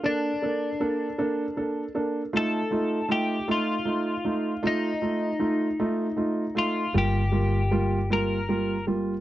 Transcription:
<<
  \new Staff \with { instrumentName = "Clean electric guitar" } { \time 6/8 \key f \mixolydian \tempo 4. = 52 d'2~ d'8 r8 | a'4 g'8 f'4. | ees'2~ ees'8 f'8 | g'4. bes'4 r8 | }
  \new Staff \with { instrumentName = "Grand piano" } { \time 6/8 \key f \mixolydian <bes d' a'>8 <bes d' a'>8 <bes d' a'>8 <bes d' a'>8 <bes d' a'>8 <bes d' a'>8 | <a ees' f'>8 <a ees' f'>8 <a ees' f'>8 <a ees' f'>8 <a ees' f'>8 <a ees' f'>8 | <a ees' f'>8 <a ees' f'>8 <a ees' f'>8 <a ees' f'>8 <a ees' f'>8 <a ees' f'>8 | <g bes f'>8 <g bes f'>8 <g bes f'>8 <g bes f'>8 <g bes f'>8 <g bes f'>8 | }
  \new Staff \with { instrumentName = "Fingered electric bass" } { \clef bass \time 6/8 \key f \mixolydian r2. | r2. | r2. | g,,2. | }
>>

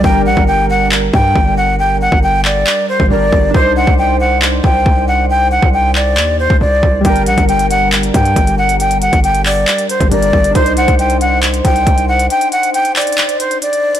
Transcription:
<<
  \new Staff \with { instrumentName = "Flute" } { \time 4/4 \key g \minor \tempo 4 = 137 g''8 fis''8 g''8 fis''8 r8 g''4 fis''8 | g''8 fis''8 g''8 d''4 c''8 d''4 | c''8 fis''8 g''8 fis''8 r8 g''4 fis''8 | g''8 fis''8 g''8 d''4 c''8 d''4 |
g''8 fis''8 g''8 fis''8 r8 g''4 fis''8 | g''8 fis''8 g''8 d''4 c''8 d''4 | c''8 fis''8 g''8 fis''8 r8 g''4 fis''8 | g''8 fis''8 g''8 d''4 c''8 d''4 | }
  \new Staff \with { instrumentName = "Synth keys" } { \time 4/4 \key g \minor <g d' bes'>1~ | <g d' bes'>2. <g d' bes'>4 | <d' ees' c''>1~ | <d' ees' c''>1 |
<g d' bes'>1~ | <g d' bes'>2. <g d' bes'>4 | <d' ees' c''>1~ | <d' ees' c''>1 | }
  \new Staff \with { instrumentName = "808-style bass" } { \clef bass \time 4/4 \key g \minor g,,8 bes,,16 g,,4.~ g,,16 g,8 g,,4~ | g,,8. g,,4~ g,,16 r8. g,,16 g,,8 g,,8 | c,8. c,4.~ c,16 c,8 c,4~ | c,8. c,4~ c,16 ees,8. c,16 c,8 c,8 |
g,,8 bes,,16 g,,4.~ g,,16 g,8 g,,4~ | g,,8. g,,4~ g,,16 r8. g,,16 g,,8 g,,8 | c,8. c,4.~ c,16 c,8 c,4 | r1 | }
  \new DrumStaff \with { instrumentName = "Drums" } \drummode { \time 4/4 bd8. bd16 r4 hc8 bd8 bd4 | r8. bd16 r8 hc8 hc8. bd16 r8 bd8 | bd8. bd16 r4 hc8 bd8 bd4 | r8. bd16 r8 hc8 hc8. bd16 r8 bd8 |
<hh bd>16 hh16 hh16 <hh bd>16 hh16 hh16 hh8 <hc hh>16 hh16 <hh bd>16 hh16 <hh bd>16 hh8 hh16 | hh16 hh16 hh16 <hh bd>16 hh16 hh16 <hc hho>8 <hc hh>16 hh16 hh16 <hh bd>16 hh16 hh16 bd16 hh16 | <hh bd>16 hh16 hh16 <hh bd>16 hh16 hh16 hh8 <hc hh>16 hh16 <hh bd>16 hh16 <hh bd>16 hh8 hh16 | hh16 hh16 hh16 hh16 hh16 hh16 <hc hh hho>32 hh32 hh32 hh32 <hc hh>16 hh16 hh16 hh16 hh16 hh8 hh16 | }
>>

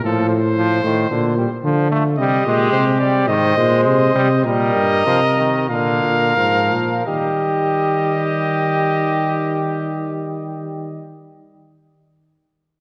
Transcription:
<<
  \new Staff \with { instrumentName = "Trumpet" } { \time 4/4 \key ees \major \tempo 4 = 93 a'8 c''2. r8 | ees''4 c''8 d''8 ees''4 ees''4 | ees''2 f''2 | ees''1~ |
ees''1 | }
  \new Staff \with { instrumentName = "Flugelhorn" } { \time 4/4 \key ees \major r1 | g'2 c''2 | bes'2 bes'2 | g'1~ |
g'1 | }
  \new Staff \with { instrumentName = "Trombone" } { \clef bass \time 4/4 \key ees \major f8 r8 f8 ees8 d8 g8 f8 a8 | g8 aes4 g8 ees8 aes4 g8 | g4 f8 ees8 d4 f4 | g1~ |
g1 | }
  \new Staff \with { instrumentName = "Tuba" } { \clef bass \time 4/4 \key ees \major a,4. a,8 bes,8 r8 d4 | c8 bes,8 c4 aes,8 bes,8 c8 c8 | bes,8 g,8 c4 bes,8 bes,8 aes,8 bes,8 | ees1~ |
ees1 | }
>>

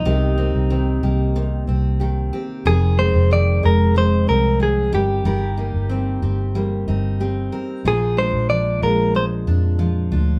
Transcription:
<<
  \new Staff \with { instrumentName = "Clean electric guitar" } { \time 4/4 \key ees \major \tempo 4 = 92 ees'2~ ees'8 r4. | aes'8 c''8 d''8 bes'8 c''8 bes'8 aes'8 g'8~ | g'2~ g'8 r4. | aes'8 c''8 d''8 bes'8 c''8 r4. | }
  \new Staff \with { instrumentName = "Nylon-string guitar" } { \time 4/4 \key ees \major ees8 bes8 c'8 g'8 bes8 c'8 g'8 c'8 | ees8 aes8 c'8 aes'8 aes8 c'8 aes'8 ees8 | ees8 bes8 c'8 g'8 bes8 c'8 g'8 c'8 | f8 aes8 d'8 f'8 aes8 d'8 f'8 d'8 | }
  \new Staff \with { instrumentName = "Steel-string acoustic guitar" } { \time 4/4 \key ees \major <c g'>8 c'8 ees8 bes8 c8 c'8 ees8 g'8 | <f, aes'>8 c'8 ees8 aes8 f,8 c'8 ees8 g8 | <g bes'>8 ees'8 c'8 c'8 g8 ees'8 c'8 bes'8 | <bes, f'>8 d'8 f8 aes8 bes,8 d'8 f8 f'8 | }
  \new Staff \with { instrumentName = "Fingered electric bass" } { \clef bass \time 4/4 \key ees \major c,8. c,8. c,4 c,4 r8 | f,,8. f,,8. f,,4 c,4 g,,8 | g,,8. g,,8. g,,4 g,,4 r8 | bes,,8. bes,,8. bes,,4 f,4 d,8 | }
>>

